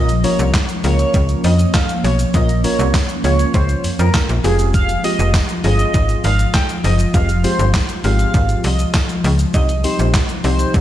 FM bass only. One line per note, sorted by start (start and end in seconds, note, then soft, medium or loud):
0.00 0.26 A#1 loud
0.39 0.60 C2 loud
0.84 1.05 C#2 medium
1.14 1.35 C#2 loud
1.44 1.65 F2 medium
2.04 2.25 B1 medium
2.34 2.66 A#1 loud
2.79 3.00 C2 loud
3.24 3.45 C#2 medium
3.54 3.76 C#2 loud
3.84 3.90 F2 soft
3.99 4.10 F2 medium
4.14 4.20 A#1 medium
4.29 4.40 A#1 medium
4.44 4.97 F1 loud
5.19 5.40 F1 loud
5.64 5.85 G1 medium
5.94 6.16 G#1 loud
6.24 6.45 G#1 loud
6.84 7.05 F#1 medium
7.14 7.46 F1 loud
7.59 7.80 G1 loud
8.04 8.25 G#1 medium
8.34 8.56 G#1 loud
8.64 8.85 C2 medium
9.24 9.46 C#2 loud
9.54 9.86 C2 loud
9.99 10.20 A#1 medium
10.44 10.65 C2 loud
10.74 10.81 C2 loud